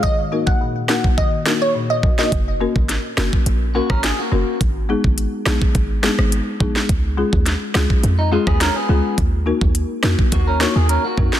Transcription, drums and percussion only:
0.03 kick loud
0.47 kick medium
0.88 cross-stick loud
0.88 snare loud
1.04 kick medium
1.18 kick medium
1.46 cross-stick medium
1.46 snare loud
2.03 kick medium
2.19 snare medium
2.32 kick loud
2.32 closed hi-hat medium
2.76 kick medium
2.89 snare medium
2.89 closed hi-hat medium
3.17 cross-stick loud
3.17 snare loud
3.33 kick medium
3.46 closed hi-hat medium
3.90 kick medium
3.90 cross-stick loud
4.03 cross-stick medium
4.03 snare loud
4.03 closed hi-hat medium
4.61 kick loud
4.61 closed hi-hat medium
5.04 kick medium
5.18 closed hi-hat medium
5.46 cross-stick loud
5.46 snare loud
5.62 kick medium
5.75 kick loud
5.75 closed hi-hat medium
6.03 cross-stick loud
6.03 snare loud
6.19 cross-stick loud
6.32 closed hi-hat medium
6.60 kick loud
6.76 snare medium
6.89 kick loud
6.89 closed hi-hat medium
7.33 kick medium
7.46 snare medium
7.46 closed hi-hat medium
7.74 cross-stick loud
7.74 snare loud
7.90 kick loud
8.04 closed hi-hat medium
8.47 kick loud
8.47 cross-stick loud
8.60 cross-stick medium
8.60 snare loud
8.60 closed hi-hat medium
9.18 kick loud
9.18 closed hi-hat medium
9.61 kick medium
9.75 closed hi-hat medium
10.03 cross-stick loud
10.03 snare loud
10.19 kick medium
10.32 kick loud
10.32 closed hi-hat medium
10.60 cross-stick medium
10.60 snare loud
10.89 closed hi-hat medium
11.18 kick medium
11.33 snare medium

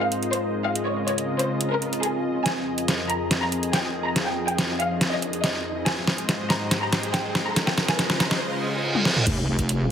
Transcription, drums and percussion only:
0.12 closed hi-hat soft
0.23 closed hi-hat soft
0.33 closed hi-hat medium
0.76 closed hi-hat medium
1.08 closed hi-hat soft
1.18 closed hi-hat medium
1.39 closed hi-hat soft
1.61 closed hi-hat medium
1.82 closed hi-hat soft
1.93 closed hi-hat soft
2.03 closed hi-hat medium
2.46 snare soft
2.46 closed hi-hat medium
2.78 closed hi-hat soft
2.88 snare medium
2.88 closed hi-hat medium
3.10 closed hi-hat medium
3.31 snare medium
3.31 closed hi-hat medium
3.52 closed hi-hat medium
3.63 closed hi-hat medium
3.73 snare medium
3.73 closed hi-hat medium
4.16 snare medium
4.16 closed hi-hat medium
4.48 closed hi-hat medium
4.58 snare medium
4.58 closed hi-hat medium
4.80 closed hi-hat medium
5.01 snare medium
5.01 closed hi-hat medium
5.22 closed hi-hat medium
5.33 closed hi-hat medium
5.44 snare medium
5.44 closed hi-hat medium
5.86 snare medium
5.86 closed hi-hat medium
6.07 snare medium
6.18 closed hi-hat medium
6.29 snare medium
6.29 closed hi-hat medium
6.50 snare medium
6.50 closed hi-hat medium
6.71 snare medium
6.71 closed hi-hat medium
6.93 snare medium
6.93 closed hi-hat medium
7.03 closed hi-hat medium
7.14 snare medium
7.14 closed hi-hat medium
7.35 snare medium
7.56 snare medium
7.56 closed hi-hat medium
7.67 snare medium
7.78 snare loud
7.88 snare medium
7.88 closed hi-hat medium
7.99 snare loud
7.99 closed hi-hat medium
8.10 snare medium
8.20 snare loud
8.20 closed hi-hat medium
8.31 snare medium
8.95 high tom medium
9.05 snare medium
9.16 mid tom medium
9.27 kick loud
9.27 closed hi-hat medium
9.27 crash loud
9.59 kick medium
9.59 closed hi-hat medium
9.69 closed hi-hat medium

